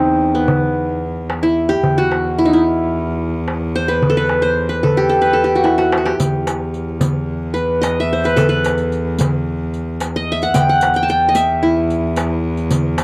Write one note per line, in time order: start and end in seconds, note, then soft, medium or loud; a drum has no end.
0.00 1.82 E2 medium
0.00 0.41 C4 medium
0.00 0.97 D#4 medium
0.08 darbuka ka soft
0.22 darbuka ka soft
0.35 2.00 B3 medium
0.35 darbuka ka soft
0.48 darbuka dum medium
0.89 darbuka ka soft
1.30 darbuka tek medium
1.43 2.38 E4 medium
1.69 2.04 G4 loud
1.69 darbuka ka soft
1.83 6.21 E2 medium
1.83 darbuka dum medium
1.98 3.28 F#4 medium
2.12 darbuka tek medium
2.25 darbuka ka soft
2.38 2.51 E4 medium
2.38 darbuka ka soft
2.45 2.59 D#4 medium
2.53 3.93 E4 medium
2.53 darbuka ka soft
3.07 darbuka ka soft
3.48 darbuka tek medium
3.76 3.94 C5 medium
3.88 4.17 B4 medium
3.88 darbuka ka soft
4.02 darbuka dum medium
4.10 4.83 A4 medium
4.17 4.48 B4 medium
4.29 darbuka tek medium
4.42 4.75 C5 medium
4.42 darbuka ka soft
4.57 darbuka ka soft
4.69 5.21 B4 medium
4.83 5.09 A4 medium
4.83 darbuka dum medium
4.97 5.44 G4 medium
5.09 5.33 A4 medium
5.22 6.31 B4 medium
5.22 darbuka ka soft
5.33 6.50 A4 medium
5.38 darbuka ka soft
5.44 5.61 G4 medium
5.51 darbuka ka soft
5.55 5.77 F#4 medium
5.64 7.03 E4 medium
5.64 darbuka tek medium
5.78 5.97 F#4 medium
5.78 darbuka ka medium
5.92 darbuka tek medium
5.97 6.11 F#4 medium
6.05 7.31 G4 medium
6.05 darbuka ka medium
6.20 10.54 E2 medium
6.20 riq medium
6.20 darbuka dum medium
6.47 riq soft
6.47 darbuka tek medium
6.74 riq soft
6.74 darbuka ka soft
6.89 darbuka ka soft
7.01 riq medium
7.01 darbuka dum medium
7.43 darbuka ka soft
7.54 8.19 B4 medium
7.54 riq soft
7.81 8.06 D#5 medium
7.81 riq soft
7.81 darbuka tek medium
8.00 8.92 E5 medium
8.13 8.31 C5 medium
8.24 8.49 B4 medium
8.24 riq soft
8.24 darbuka ka soft
8.36 9.53 A4 medium
8.36 riq medium
8.36 darbuka dum loud
8.49 9.58 B4 medium
8.64 riq soft
8.64 darbuka tek medium
8.78 riq soft
8.78 darbuka ka soft
8.92 riq soft
8.92 darbuka ka soft
9.08 darbuka ka soft
9.19 riq medium
9.19 darbuka dum loud
9.74 riq soft
10.00 riq soft
10.00 darbuka tek medium
10.16 10.38 D#5 medium
10.32 11.24 E5 medium
10.42 10.61 F#5 medium
10.42 riq soft
10.42 darbuka ka soft
10.54 13.04 E2 medium
10.54 10.75 G5 medium
10.54 riq medium
10.54 darbuka dum loud
10.69 11.02 F#5 medium
10.81 riq soft
10.81 darbuka tek medium
10.94 11.09 G5 loud
10.94 riq soft
10.94 darbuka ka soft
11.03 11.80 A5 medium
11.08 11.93 G5 loud
11.08 riq soft
11.08 darbuka ka soft
11.24 darbuka ka soft
11.29 11.41 D#5 medium
11.35 12.27 E5 medium
11.35 riq medium
11.63 13.02 E4 medium
11.77 darbuka ka soft
11.90 riq soft
12.16 riq soft
12.16 darbuka tek medium
12.57 riq soft
12.57 darbuka ka soft
12.71 riq medium
12.71 darbuka dum medium
12.85 darbuka ka soft
12.98 riq medium
12.98 darbuka tek medium